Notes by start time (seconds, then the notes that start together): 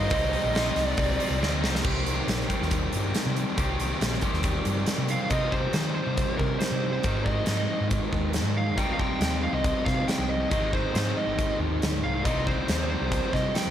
Already playing: G#3 C4 D#4 D#5
0.09 C2 C3 G3 C4 D#4, kick, open hi-hat
0.32 G3 C4 D#4, open hi-hat
0.44 A#1
0.54 C3 G3 C4 D#4, snare, open hi-hat
0.76 C2, snare, open hi-hat
0.85 D5
0.97 C2, kick, open hi-hat
1.18 G3 C4 D#4, open hi-hat
1.30 C2
1.40 D2 C3 G3 C4 D#4, snare
1.61 C2 G3 C4 D#4, snare
1.75 snare
1.83 C2 C3 D#3 G3 C4 G4, kick, crash
2.06 closed hi-hat
2.28 A#1, snare, closed hi-hat
2.40 snare
2.48 C3 D#3 G3 C4 G4, kick, closed hi-hat
2.61 D#2, snare
2.71 kick, closed hi-hat
2.93 G2, closed hi-hat
3.14 snare, closed hi-hat
3.26 C3
3.36 closed hi-hat
3.56 C2 C3 D#3 G3 C4 G4, kick, closed hi-hat
3.80 closed hi-hat
4.01 A#1, snare, closed hi-hat
4.13 snare
4.21 D#3 G3 C4 G4, kick, closed hi-hat
4.25 C3
4.33 D#2, snare
4.43 kick, closed hi-hat
4.65 G2, closed hi-hat
4.86 snare, closed hi-hat
4.98 C3
5.08 F5, closed hi-hat
5.30 C3 G3 C4 D#4 D#5, kick, closed hi-hat
5.52 C5, kick
5.73 D#3 C5, snare, closed hi-hat
5.95 C5
6.07 C3
6.17 kick, closed hi-hat
6.37 C3 A#4, kick
6.59 C5, snare, closed hi-hat
6.72 C3
6.92 C5
7.03 G#2 D#3 G#3, kick, closed hi-hat
7.08 C4 D#4
7.24 D#5, kick
7.46 G#2, snare, closed hi-hat
7.81 G#2
7.91 kick, closed hi-hat
8.13 D#2, kick
8.33 snare, closed hi-hat
8.45 G#2
8.57 F5
8.77 C2 C3 G3 C4 D#4 G5, kick, closed hi-hat
8.93 F5
8.99 G5, kick
9.21 D#2, snare, closed hi-hat
9.43 F5
9.53 C2 D#5
9.64 D#5, kick, closed hi-hat
9.85 C3 F5, kick, snare
10.08 G5, snare, closed hi-hat
10.19 C2
10.29 D#5
10.50 G#1 G#2 D#3 G#3 C4 D#4 D#5, kick, closed hi-hat
10.73 C5, kick
10.94 G#2 C5, snare, closed hi-hat
11.17 D#5
11.27 G#1
11.39 kick, closed hi-hat
11.60 D#2
11.82 D2, snare, closed hi-hat
12.03 C2 F5
12.24 C2 C3 G3 C4 D#4 D#5, kick, closed hi-hat
12.47 C5, kick
12.68 D#2, snare, closed hi-hat
12.90 C5
13.01 C2
13.12 kick, closed hi-hat
13.33 C3 D#5, kick, snare
13.55 G5, snare, closed hi-hat
13.67 C2